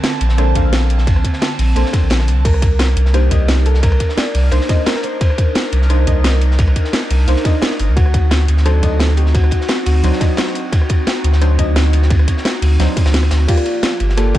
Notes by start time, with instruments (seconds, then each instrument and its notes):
Already playing: analog synth pad D3 C4 A5, synth stab A#3 D4 A4 C5 F5, clean electric guitar A#4
0.04 snare, closed hi-hat, ride
0.21 sub bass A#1, closed hi-hat, ride
0.29 snare
0.38 synth stab A#3 D4 A4 C5, cross-stick, closed hi-hat, ride
0.55 sub bass A#1, synth stab A#3 D4 A4 F5, kick, closed hi-hat, ride
0.73 snare, closed hi-hat, ride
0.90 open hi-hat, ride
0.98 snare
1.07 kick, closed hi-hat, ride
1.16 cross-stick, ride
1.24 kick, closed hi-hat, ride
1.33 snare
1.42 snare, closed hi-hat, ride
1.59 sub bass A#1, closed hi-hat, open hi-hat
1.75 sub bass A#1, synth stab A#3 D4 A4 C5, closed hi-hat, ride
1.86 snare
1.93 kick, snare, closed hi-hat, ride
2.02 sub bass A#1
2.10 snare, closed hi-hat, ride
2.19 cross-stick, snare
2.28 sub bass C2, open hi-hat, ride
2.45 analog synth pad D4 D#4 A#4, clean electric guitar A#4, kick, closed hi-hat, crash, ride
2.54 cross-stick
2.62 kick, closed hi-hat, ride
2.79 snare, closed hi-hat, ride
2.96 sub bass C2, closed hi-hat, ride
3.06 snare
3.13 synth stab A#3 D4 D#4 C5, clean electric guitar G4, cross-stick, closed hi-hat, ride
3.31 sub bass C2, synth stab A#3 D4 D#4 D#5, kick, closed hi-hat, ride
3.48 snare, closed hi-hat, ride
3.66 clean electric guitar A4, open hi-hat, ride
3.74 snare
3.83 clean electric guitar A#4, kick, closed hi-hat, ride
3.92 cross-stick, ride
4.00 kick, closed hi-hat, ride
4.09 snare
4.17 clean electric guitar D5, snare, closed hi-hat, ride
4.34 sub bass C2, closed hi-hat, open hi-hat
4.51 sub bass C2, synth stab A#3 D4 D#4 C5, clean electric guitar C5, closed hi-hat, ride
4.61 snare
4.69 synth stab A#3 D4 D#4 D#5, kick, snare, closed hi-hat, ride
4.86 clean electric guitar A#4, snare, closed hi-hat, ride
4.95 cross-stick, snare
5.03 clean electric guitar C5, open hi-hat, ride
5.21 kick, closed hi-hat, ride
5.30 cross-stick
5.38 kick, closed hi-hat, ride
5.55 snare, closed hi-hat, ride
5.72 sub bass C2, closed hi-hat, ride
5.82 snare
5.89 synth stab A#3 D4 D#4 C5, cross-stick, closed hi-hat, ride
6.06 sub bass C2, synth stab A#3 D4 D#4 D#5, kick, closed hi-hat, ride
6.24 snare, closed hi-hat, ride
6.41 open hi-hat, ride
6.51 snare
6.59 kick, closed hi-hat, ride
6.67 cross-stick, ride
6.76 kick, closed hi-hat, ride
6.85 snare
6.93 snare, closed hi-hat, ride
7.10 sub bass C2, closed hi-hat, open hi-hat
7.27 sub bass C2, synth stab A#3 D4 D#4 C5, closed hi-hat, ride
7.36 snare
7.44 synth stab A#3 D4 D#4 D#5, kick, snare, closed hi-hat, ride
7.62 snare, closed hi-hat, ride
7.71 cross-stick, snare
7.79 sub bass G1, open hi-hat, ride
7.88 sub bass D2
7.96 analog synth pad C4 F#4, clean electric guitar F#4, kick, closed hi-hat, ride
8.06 cross-stick
8.14 kick, closed hi-hat, ride
8.31 snare, closed hi-hat, ride
8.48 sub bass D2, closed hi-hat, ride
8.57 snare
8.65 synth stab F#3 D4 D#4 C5, clean electric guitar A4, cross-stick, closed hi-hat, ride
8.82 sub bass D2, synth stab F#3 D4 D#4 D#5, kick, closed hi-hat, ride
9.00 snare, closed hi-hat, ride
9.17 clean electric guitar G4, open hi-hat, ride
9.26 snare
9.34 clean electric guitar F#4, kick, closed hi-hat, ride
9.44 cross-stick, ride
9.51 kick, closed hi-hat, ride
9.61 snare
9.68 snare, closed hi-hat, ride
9.86 sub bass D2, clean electric guitar F#4, closed hi-hat, open hi-hat
10.03 sub bass D2, synth stab F#3 D4 D#4 C5, closed hi-hat, ride
10.13 snare
10.20 synth stab F#3 D4 D#4 D#5, kick, snare, closed hi-hat, ride
10.37 snare, closed hi-hat, ride
10.47 cross-stick, snare
10.55 open hi-hat, ride
10.72 kick, closed hi-hat, ride
10.81 cross-stick
10.89 kick, closed hi-hat, ride
11.07 snare, closed hi-hat, ride
11.24 sub bass D2, closed hi-hat, ride
11.33 snare
11.41 synth stab F#3 D4 D#4 C5, cross-stick, closed hi-hat, ride
11.58 sub bass D2, synth stab F#3 D4 D#4 D#5, kick, closed hi-hat, ride
11.76 snare, closed hi-hat, ride
11.93 open hi-hat, ride
12.02 snare
12.10 kick, closed hi-hat, ride
12.19 cross-stick, ride
12.28 kick, closed hi-hat, ride
12.37 snare
12.45 snare, closed hi-hat, ride
12.62 sub bass D2, closed hi-hat, open hi-hat
12.79 sub bass D2, synth stab F#3 D4 D#4 C5, snare, closed hi-hat, ride
12.96 kick, snare, closed hi-hat, open hi-hat
13.05 sub bass D2, snare, ride
13.14 snare, closed hi-hat
13.22 cross-stick, open hi-hat
13.31 sub bass D2, snare, open hi-hat, ride
13.47 analog synth pad F3 A#3 G4, synth stab A#3 F4 G4 D5, clean electric guitar F4, kick, closed hi-hat, crash, ride
13.57 cross-stick, closed hi-hat
13.66 closed hi-hat, ride
13.83 snare, closed hi-hat, ride
14.00 sub bass G1, closed hi-hat, ride
14.09 snare
14.17 synth stab A#3 F4 G4 D5, clean electric guitar A4, cross-stick, closed hi-hat, ride
14.34 sub bass G1, synth stab A#3 F4 G4, kick, closed hi-hat, ride